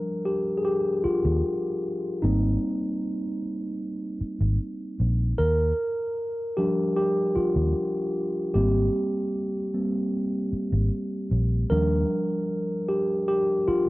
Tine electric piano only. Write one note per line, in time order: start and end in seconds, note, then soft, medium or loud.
0.00 2.25 F3 medium
0.00 2.23 G3 medium
0.00 2.25 D4 medium
0.00 0.29 A#4 medium
0.25 0.59 G4 medium
0.58 0.65 G#4 medium
0.65 1.06 G4 medium
1.04 2.19 F4 medium
2.22 3.38 G3 soft
2.22 3.38 A#3 medium
2.22 3.38 C4 medium
2.22 2.98 D#4 medium
5.38 6.61 A#4 loud
6.57 8.51 F3 medium
6.57 8.51 G3 soft
6.57 8.52 D4 medium
6.57 6.94 G4 medium
6.96 7.37 G4 medium
7.36 8.58 F4 medium
8.54 9.72 G3 medium
8.54 9.73 A#3 soft
8.54 9.73 C4 medium
8.54 9.29 G4 medium
9.74 10.09 G3 soft
9.74 10.09 A#3 soft
9.74 10.09 C4 medium
11.70 13.89 F3 medium
11.70 13.89 G3 soft
11.70 13.89 D4 medium
11.70 12.85 A#4 loud
12.88 13.27 G4 medium
13.28 13.69 G4 medium
13.68 13.89 F4 medium